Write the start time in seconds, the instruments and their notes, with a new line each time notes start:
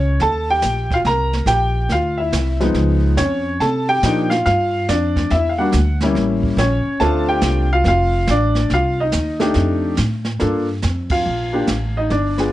Already playing: upright bass C#2, upright piano C#4 C#5
0.20 upright bass D#2, upright piano A4 A5, brush sweep, snare
0.50 upright piano G4 G5
0.62 upright bass A#1, snare, hi-hat pedal
0.91 upright piano F5, kick, snare
0.95 upright piano F4
1.05 upright bass C2, upright piano A#4 A#5, brush sweep, snare
1.33 snare
1.46 upright bass A#1, upright piano G4 G5, snare, hi-hat pedal
1.89 upright bass D2, upright piano F5, brush sweep, snare
1.94 upright piano F4
2.18 upright piano E4 E5
2.32 upright bass C2, snare, hi-hat pedal
2.60 upright piano F3 G#3 B3 D#4, snare
2.74 upright bass C#2, brush sweep, snare
3.17 upright bass F2, upright piano C#4 C#5, snare, hi-hat pedal
3.60 upright bass C3, upright piano A4 A5, brush sweep, snare
3.89 upright piano G4 G5
4.03 upright bass A#2, upright piano F3 A#3 D4 D#4, snare, hi-hat pedal
4.30 upright piano F4 F5, snare
4.46 upright bass G2, upright piano F4 F5, brush sweep, snare
4.88 upright bass F2, upright piano D4 D5, snare, hi-hat pedal
5.16 kick, snare
5.30 upright bass E2, upright piano E4 E5, brush sweep, snare
5.49 upright piano F5
5.58 upright piano G3 A#3 D4 F#4 F#5
5.72 upright bass D2, snare, hi-hat pedal
6.01 upright piano G3 A#3 C#4 E4, snare
6.15 upright bass A1, brush sweep, snare
6.43 kick
6.57 upright bass A#1, upright piano C#4 C#5, snare, hi-hat pedal
6.86 muted upright bass stroke
7.00 upright bass D2, upright piano A3 C4 D4 F4 A4 A5, brush sweep, snare
7.29 upright piano G4 G5
7.41 upright bass C2, snare, hi-hat pedal
7.73 upright piano F4 F5
7.84 upright bass F1, upright piano F5, brush sweep, snare
7.89 upright piano F4
8.27 upright bass A1, upright piano D4 D5, snare, hi-hat pedal
8.55 snare
8.70 upright bass C2, upright piano F5, brush sweep, snare
8.74 upright piano F4
9.00 upright piano D#4 D#5
9.12 upright bass D#2, snare, hi-hat pedal
9.40 upright piano A3 D4 D#4 G4, snare
9.54 upright bass F2, brush sweep, snare
9.97 upright bass A2, snare, hi-hat pedal
10.25 snare
10.39 upright bass G2, upright piano A#3 D4 F4 A4, brush sweep, snare
10.82 upright bass F2, snare, hi-hat pedal
11.10 upright piano F4 F5, kick, ride
11.24 upright bass A#1, brush sweep
11.53 upright piano A#3 D4 F4 G4
11.67 upright bass A1, snare, hi-hat pedal
11.97 upright piano D#4 D#5
12.10 upright bass G1, upright piano D4 D5, brush sweep, snare
12.38 upright piano B3 D4 F4 G#4, snare